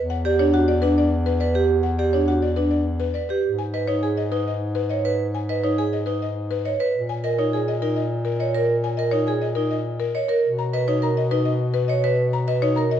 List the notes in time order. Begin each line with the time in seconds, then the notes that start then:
Already playing: E2
0.10 F#5
0.25 G4 D5
0.39 D4 C#5
0.54 F#4 F#5
0.68 D5
0.82 D4 B4
0.98 D5
1.26 B4
1.40 B4 D5
1.55 G4 B4
1.83 F#5
1.99 G4 D5
2.13 D4 C#5
2.28 F#4 F#5
2.42 D5
2.56 D4 B4
2.71 D5
3.00 B4
3.14 B4 D5
3.29 G4 B4
3.45 G#2
3.59 G#5
3.74 B4 D#5
3.88 D#4 C#5
4.03 G#4 G#5
4.17 D#5
4.32 D#4 B4
4.48 D#5
4.75 B4
4.89 C#5 D#5
5.05 B4
5.35 G#5
5.49 B4 D#5
5.64 D#4 C#5
5.78 G#4 G#5
5.93 D#5
6.06 D#4 B4
6.22 D#5
6.51 B4
6.65 C#5 D#5
6.80 B4
6.95 A#2
7.09 G#5
7.24 A#4 D#5
7.39 D#4 C#5
7.53 G#4 G#5
7.68 D#5
7.82 D#4 A#4
7.96 D#5
8.25 A#4
8.40 C#5 D#5
8.55 A#4
8.84 G#5
8.97 A#4 D#5
9.11 D#4 C#5
9.27 G#4 G#5
9.42 D#5
9.55 D#4 A#4
9.71 D#5
10.00 A#4
10.15 C#5 D#5
10.29 A#4
10.44 B2
10.59 A#5
10.73 B4 D#5
10.88 D#4 C#5
11.02 A#4 A#5
11.17 D#5
11.31 D#4 B4
11.45 D#5
11.74 B4
11.88 C#5 D#5
12.04 B4
12.33 A#5
12.48 B4 D#5
12.62 D#4 C#5
12.76 A#4 A#5
12.91 D#5